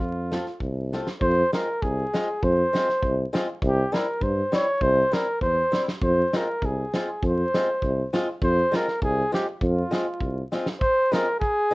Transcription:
Already playing: flugelhorn F4
0.00 tuba F2
0.31 steel-string acoustic guitar A3 C4 F4, snare
0.46 snare
0.60 tuba C2, kick
0.93 steel-string acoustic guitar A3 C4 F4, snare
1.07 snare
1.21 tuba F2, flugelhorn C5, kick
1.53 steel-string acoustic guitar G#3 C4 F4, flugelhorn A#4, snare
1.82 tuba C2, flugelhorn G#4, kick
2.13 steel-string acoustic guitar G#3 C4 F4, snare
2.42 tuba F2, flugelhorn C5, kick
2.73 steel-string acoustic guitar G#3 C4 F4, snare
2.89 snare
3.03 tuba C2, kick
3.33 steel-string acoustic guitar G#3 C4 F4, snare
3.62 tuba C2, flugelhorn G4, kick
3.92 steel-string acoustic guitar G3 C4 E4, flugelhorn A#4, snare
4.21 tuba G2, flugelhorn C5, kick
4.52 steel-string acoustic guitar G3 C4 E4, flugelhorn C#5, snare
4.81 tuba C2, flugelhorn C5, kick
5.11 steel-string acoustic guitar G3 C4 E4, flugelhorn A#4, snare
5.41 tuba E2, flugelhorn C5, kick
5.72 steel-string acoustic guitar G3 C4 E4, snare
5.88 snare
6.01 tuba F2, flugelhorn C5, kick
6.33 steel-string acoustic guitar G#3 C4 F4, flugelhorn A#4, snare
6.62 tuba C2, flugelhorn G#4, kick
6.94 steel-string acoustic guitar G#3 C4 F4, snare
7.23 tuba F2, flugelhorn C5, kick
7.54 steel-string acoustic guitar G#3 C4 F4, snare
7.82 tuba C2, kick
8.13 steel-string acoustic guitar G#3 C4 F4, snare
8.42 tuba F2, flugelhorn C5, kick
8.72 steel-string acoustic guitar G#3 C4 F4, snare
8.76 flugelhorn A#4
8.88 snare
9.02 tuba C2, flugelhorn G#4, kick
9.32 steel-string acoustic guitar G#3 C4 F4, flugelhorn G4, snare
9.61 tuba F2, flugelhorn F4, kick
9.91 steel-string acoustic guitar G#3 C4 F4, snare
10.21 tuba C2, kick
10.52 steel-string acoustic guitar G#3 C4 F4, snare
10.66 snare
10.81 flugelhorn C5, kick
11.12 steel-string acoustic guitar G#3 C4 F4, flugelhorn A#4, snare, hi-hat pedal
11.40 flugelhorn G#4, kick
11.71 steel-string acoustic guitar G#3

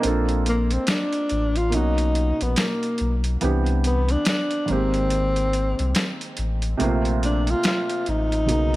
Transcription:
Already playing: felt piano A#4 D#5
0.00 felt piano A#3 C4 D4, closed hi-hat
0.04 sub bass A#1, felt piano F4 A4
0.29 closed hi-hat
0.46 tenor saxophone A#3, closed hi-hat
0.71 tenor saxophone C4, closed hi-hat
0.87 tenor saxophone D4, snare, closed hi-hat, tambourine
1.13 closed hi-hat
1.29 sub bass A1, closed hi-hat
1.56 tenor saxophone F4, closed hi-hat
1.70 felt piano B2 A#3 C#4, closed hi-hat
1.74 sub bass B1, tenor saxophone D#4, felt piano D#4 F#4
1.98 closed hi-hat
2.15 closed hi-hat
2.41 sub bass A#1, tenor saxophone B3, closed hi-hat
2.56 tenor saxophone A#3, snare, closed hi-hat, tambourine
2.83 closed hi-hat
2.98 sub bass B1, closed hi-hat
3.24 closed hi-hat
3.41 sub bass C2, felt piano E3 B3 C4 D4 G4, closed hi-hat
3.66 closed hi-hat
3.84 tenor saxophone B3, closed hi-hat
4.09 tenor saxophone D4, closed hi-hat
4.25 tenor saxophone D4, snare, closed hi-hat, tambourine
4.51 closed hi-hat
4.66 felt piano D#3 G#3 A#3, closed hi-hat
4.70 sub bass G#1, felt piano C4 G4, tenor saxophone C4
4.94 closed hi-hat
5.10 closed hi-hat
5.36 closed hi-hat
5.53 closed hi-hat
5.79 sub bass C2, closed hi-hat
5.95 snare, closed hi-hat, tambourine
6.21 closed hi-hat
6.37 sub bass A1, closed hi-hat
6.62 closed hi-hat
6.78 sub bass A#1, felt piano C3 A3 A#3, closed hi-hat
6.83 felt piano C4 F4
7.05 closed hi-hat
7.23 tenor saxophone D4, closed hi-hat
7.47 tenor saxophone F4, closed hi-hat
7.63 snare, closed hi-hat, tambourine
7.67 tenor saxophone F4
7.89 closed hi-hat
8.06 sub bass A1, tenor saxophone D#4, closed hi-hat
8.32 closed hi-hat
8.46 felt piano C#3 F#3 A#3, closed hi-hat
8.50 sub bass B1, felt piano B3 D#4

